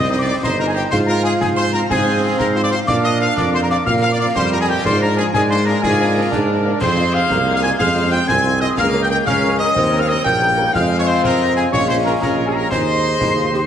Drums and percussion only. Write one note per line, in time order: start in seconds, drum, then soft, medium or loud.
0.43 concert bass drum medium
0.43 snare medium
0.92 concert bass drum medium
0.92 snare medium
0.92 crash soft
1.41 concert bass drum medium
1.41 snare medium
1.74 snare medium
1.90 concert bass drum loud
1.90 snare medium
2.40 concert bass drum medium
2.40 snare medium
2.88 concert bass drum medium
2.88 snare medium
2.88 crash soft
3.37 concert bass drum medium
3.37 snare medium
3.70 snare medium
3.86 concert bass drum loud
3.86 snare medium
4.36 concert bass drum medium
4.36 snare medium
4.85 concert bass drum medium
4.85 snare medium
4.85 crash soft
5.34 concert bass drum medium
5.34 snare medium
5.67 snare medium
5.83 concert bass drum loud
5.83 snare medium
6.32 concert bass drum medium
6.32 snare medium
6.81 concert bass drum loud
6.81 snare medium
6.81 crash medium
7.30 concert bass drum medium
7.30 snare medium
7.63 snare medium
7.79 concert bass drum medium
7.79 snare medium
8.29 concert bass drum loud
8.29 snare medium
8.77 concert bass drum medium
8.77 snare loud
8.77 crash soft
9.27 concert bass drum medium
9.27 snare loud
9.60 snare medium
9.76 concert bass drum loud
9.76 snare medium
10.25 concert bass drum medium
10.25 snare medium
10.75 concert bass drum medium
10.75 snare medium
10.75 crash soft
11.24 concert bass drum loud
11.24 snare medium
11.57 snare medium
11.73 concert bass drum loud
11.73 snare medium
12.22 concert bass drum medium
12.22 snare medium
12.71 concert bass drum medium
12.71 snare medium
12.71 crash soft
13.21 concert bass drum loud
13.21 snare medium
13.54 snare medium